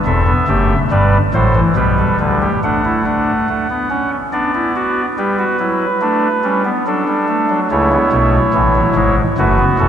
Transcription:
0.06 0.32 E1 medium
0.06 0.32 E2 medium
0.06 0.24 C4 medium
0.06 0.32 A4 medium
0.06 0.79 E5 medium
0.26 0.45 B3 medium
0.48 0.74 F#1 medium
0.48 0.74 F#2 medium
0.48 0.74 A3 loud
0.48 0.75 G4 medium
0.91 1.18 G1 medium
0.91 1.18 G2 medium
0.91 1.18 G3 medium
0.91 1.18 B4 medium
0.91 1.18 D5 medium
1.34 1.60 A1 medium
1.34 1.60 A2 medium
1.34 1.52 F#3 medium
1.34 1.60 A4 medium
1.34 1.60 C5 medium
1.55 1.73 E3 medium
1.76 2.03 B1 medium
1.76 2.03 B2 medium
1.76 2.50 G3 medium
1.76 1.95 G4 medium
1.76 2.18 B4 medium
1.99 2.17 A4 medium
2.20 2.46 D2 medium
2.20 2.46 D3 medium
2.20 2.38 B4 medium
2.42 2.60 G4 medium
2.64 3.47 A3 medium
2.64 2.82 D4 medium
2.64 4.10 F#5 medium
2.85 3.03 E4 medium
3.05 3.32 D4 medium
3.49 3.67 A3 medium
3.70 3.88 B3 medium
3.90 4.17 C#4 medium
4.33 5.06 B3 medium
4.33 4.51 D4 medium
4.33 5.06 D5 medium
4.55 4.73 E4 medium
4.76 5.02 F#4 medium
5.18 5.44 G3 medium
5.18 5.36 G4 medium
5.18 6.63 B4 medium
5.39 5.57 F#4 medium
5.59 5.86 F#3 medium
5.59 5.86 E4 medium
6.01 6.28 A3 medium
6.01 6.28 D4 medium
6.44 6.70 G3 medium
6.44 6.63 C#4 loud
6.65 6.83 B3 medium
6.87 7.05 F#3 medium
6.87 7.60 D4 medium
6.87 7.60 A4 medium
7.08 7.26 G3 medium
7.28 7.47 A3 medium
7.50 7.68 F#3 medium
7.71 7.97 C#2 medium
7.71 7.97 C#3 medium
7.71 7.89 A3 medium
7.71 9.16 E4 medium
7.71 9.16 C#5 medium
7.92 8.10 B3 medium
8.12 8.39 B1 medium
8.12 8.39 B2 medium
8.12 8.39 A3 medium
8.54 8.80 A1 medium
8.54 8.80 A2 medium
8.54 8.73 E3 medium
8.75 8.94 F#3 medium
8.95 9.22 G#1 medium
8.95 9.22 G#2 medium
8.95 9.22 G#3 loud
9.38 9.64 F#1 medium
9.38 9.65 F#2 medium
9.38 9.57 A3 loud
9.38 9.89 F#4 medium
9.38 9.65 B4 medium
9.59 9.77 B3 medium
9.79 9.89 E1 medium
9.79 9.89 E2 medium
9.79 9.89 C#4 medium
9.79 9.89 A4 medium

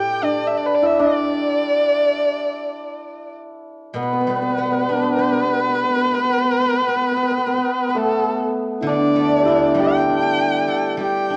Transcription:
0.00 0.51 A2 medium
0.00 3.05 G4 medium
0.00 1.65 A4 medium
0.00 0.35 B4 medium
0.00 0.26 G5 medium
0.22 0.99 D4 medium
0.22 0.49 D5 medium
0.48 0.59 E5 medium
0.57 0.68 D5 medium
0.66 0.77 B4 medium
0.75 0.88 D5 medium
0.83 4.30 E4 medium
0.83 1.02 E5 medium
1.00 4.73 D4 medium
1.00 3.35 D5 loud
3.94 5.80 B2 medium
3.94 4.02 B3 medium
3.94 7.90 B4 loud
4.02 4.12 B3 medium
4.13 4.20 B3 medium
4.20 4.29 B3 medium
4.26 5.50 G3 soft
4.26 4.35 B3 medium
4.36 4.41 B3 medium
4.42 4.49 B3 medium
4.49 4.57 B3 medium
4.57 4.65 B3 medium
4.57 5.81 B3 soft
4.65 4.71 B3 medium
4.71 4.80 B3 medium
4.80 4.88 B3 medium
4.89 4.96 B3 medium
4.89 6.12 D4 soft
4.97 5.01 B3 medium
5.02 5.09 B3 medium
5.10 5.15 B3 soft
5.15 5.22 B3 medium
5.15 6.42 G4 soft
5.22 5.31 B3 soft
5.31 5.36 B3 medium
5.37 5.44 B3 soft
5.44 5.52 B3 medium
5.52 5.58 B3 soft
5.59 5.69 B3 medium
5.69 5.74 B3 soft
5.75 5.83 B3 medium
5.83 5.89 B3 medium
5.89 5.96 B3 medium
5.96 6.05 B3 medium
6.05 6.11 B3 medium
6.12 6.17 B3 soft
6.18 6.24 B3 medium
6.24 6.29 B3 soft
6.29 6.37 B3 soft
6.37 6.44 B3 soft
6.45 6.52 B3 medium
6.52 6.59 B3 soft
6.59 6.65 B3 medium
6.65 6.73 B3 soft
6.73 6.81 B3 medium
6.82 6.87 B3 medium
6.88 6.95 B3 medium
6.96 7.01 B3 soft
7.01 7.11 B3 medium
7.11 7.16 B3 medium
7.16 7.22 B3 medium
7.23 7.30 B3 medium
7.31 7.38 B3 medium
7.38 7.46 B3 medium
7.47 7.54 B3 medium
7.54 7.57 B3 medium
7.54 7.88 B3 medium
7.89 11.37 B3 soft
7.89 8.00 B4 medium
7.95 11.37 A3 medium
7.95 8.42 A4 medium
8.81 10.67 D3 medium
8.81 9.45 E4 medium
8.87 11.37 D4 medium
8.87 9.74 D5 medium
9.16 10.38 A3 soft
9.42 11.37 E4 medium
9.42 9.79 G4 medium
9.47 10.08 D4 soft
9.74 10.96 G3 medium
9.79 11.00 G4 medium
9.79 10.97 G5 loud
10.09 11.29 D4 soft
10.38 11.37 G4 soft
10.68 11.37 A4 soft
10.97 11.37 G3 medium
10.97 11.37 G4 medium
11.01 11.37 G5 loud
11.30 11.37 D4 soft

